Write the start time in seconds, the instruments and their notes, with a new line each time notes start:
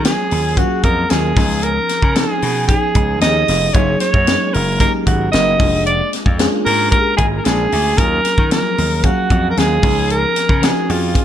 Already playing: slap bass D#3, fm electric piano F#3 A#3 C#4 F4 G#4
0.05 fm electric piano F#3 A#3 C#4 F4 A#4, alto saxophone G#4, snare, closed hi-hat
0.31 slap bass D#2, open hi-hat
0.57 fm electric piano F#3 A#3 C#4 F4 G#4, alto saxophone F#4, kick, closed hi-hat
0.83 slap bass F2, alto saxophone A#4, kick, closed hi-hat
1.09 slap bass D#2, fm electric piano F#3 A#3 C#4 F4 G#4, alto saxophone G#4, snare, closed hi-hat
1.37 slap bass C#2, fm electric piano F3 B3 C#4 D#4 G#4, kick, snare, open hi-hat
1.63 alto saxophone A#4, closed hi-hat
1.89 snare, closed hi-hat
2.02 slap bass C#3, kick
2.16 fm electric piano F3 B3 C#4 D#4 G#4, alto saxophone G#4, snare, closed hi-hat
2.42 slap bass B2, open hi-hat
2.68 fm electric piano F3 B3 C#4 D#4 G#4, alto saxophone G#4, kick, closed hi-hat
2.95 slap bass C#2, kick, closed hi-hat
3.20 slap bass D#2, fm electric piano F3 B3 C#4 D#4 G4, alto saxophone D#5, snare, closed hi-hat
3.28 fm electric piano G#4
3.48 slap bass F1, snare, open hi-hat
3.74 slap bass F#1, fm electric piano F#3 A#3 C#4 D#4 G#4, alto saxophone C#5, kick, closed hi-hat
4.00 alto saxophone C#5, snare, closed hi-hat
4.14 slap bass F#2, kick
4.27 fm electric piano F#3 G#3 C#4 D#4 G#4, snare, closed hi-hat
4.34 fm electric piano A#3
4.53 slap bass F#1, alto saxophone A#4, open hi-hat
4.80 fm electric piano F#3 A#3 C#4 D#4 G4, alto saxophone A#4, kick, closed hi-hat
4.87 fm electric piano G#4
5.06 slap bass G#1, alto saxophone F#4, kick, closed hi-hat
5.32 slap bass F#1, fm electric piano F#3 A#3 C#4 D#4 A#4, alto saxophone D#5, snare, closed hi-hat
5.59 slap bass F1, fm electric piano G#3 A#3 D4 F4 G#4, kick, open hi-hat
5.86 alto saxophone D5, closed hi-hat
6.13 snare, closed hi-hat
6.26 slap bass F2, kick
6.39 fm electric piano G#3 A#3 C#4 F4 G#4, snare, closed hi-hat
6.45 fm electric piano D4
6.66 slap bass G#2, alto saxophone A#4, open hi-hat
6.91 fm electric piano G#3 A#3 D4 F4 G4, alto saxophone A#4, kick, closed hi-hat
6.99 fm electric piano G#4
7.17 slap bass G#1, alto saxophone G#4, kick, closed hi-hat
7.37 alto saxophone A#4
7.45 slap bass A#1, fm electric piano G#3 A#3 D4 F4 G#4, alto saxophone G#4, snare, closed hi-hat
7.72 slap bass D2, open hi-hat
7.97 slap bass D#2, fm electric piano F#3 A#3 C#4 F4 G#4, alto saxophone A#4, kick, closed hi-hat
8.25 snare, closed hi-hat
8.38 slap bass D#3, kick
8.51 fm electric piano F3 A#3 C#4 F4 G#4, alto saxophone A#4, snare, closed hi-hat
8.58 fm electric piano F#3
8.78 slap bass D#2, open hi-hat
9.03 fm electric piano F#3 A#3 C#4 G#4 F5, alto saxophone F#4, kick, closed hi-hat
9.30 slap bass F2, kick, closed hi-hat
9.50 alto saxophone A#4
9.56 slap bass D#2, fm electric piano F#3 A#3 C#4 F4 G#4, alto saxophone G#4, snare, closed hi-hat
9.82 slap bass C#2, fm electric piano F3 B3 C#4 D#4 G#4, kick, open hi-hat
10.10 alto saxophone A#4, closed hi-hat
10.36 snare, closed hi-hat
10.49 slap bass C#3, kick
10.61 fm electric piano F3 B3 C#4 D#4 F#4, alto saxophone G#4, snare, closed hi-hat
10.69 fm electric piano G#4
10.89 slap bass F2, alto saxophone F4, open hi-hat
11.14 fm electric piano F3 B3 C#4 D#4 G#4, kick, closed hi-hat